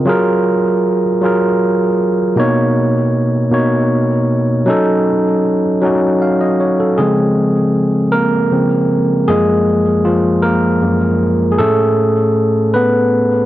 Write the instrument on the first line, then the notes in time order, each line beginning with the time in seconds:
tine electric piano
0.05 F#3 F4 G#4 A#4
1.22 F#3 F4 G#4 A#4
2.36 B2 A#3 D#4 C#5
3.51 B2 A#3 D#4 C#5
4.66 F#3 C#4 D#4 A4
5.81 F#3 C#4 D#4 F#4
6.22 F5
6.41 D#5
6.60 C#5
6.80 A4
6.98 C#3 F3 G#3 C4 G#4
8.12 A#3 A#4
8.52 C#3 F3 C4
9.28 F#2 F3 G#3 A#3 G#4
10.05 F3 F4
10.42 A#3 A#4
10.82 F#2 F3 A#3
11.52 G#4
11.58 A2 A3 C#4 G#4 A4
12.74 B3 B4